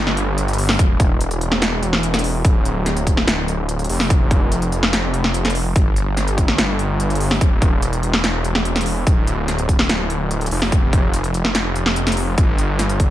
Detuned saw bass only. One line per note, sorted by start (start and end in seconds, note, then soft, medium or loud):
0.00 0.77 G1 medium
0.79 2.43 E1 medium
2.45 3.87 D1 medium
3.89 5.74 F1 medium
5.76 7.39 G1 medium
7.41 9.05 E1 medium
9.07 10.49 D1 medium
10.52 12.36 F1 loud
12.38 13.10 G1 medium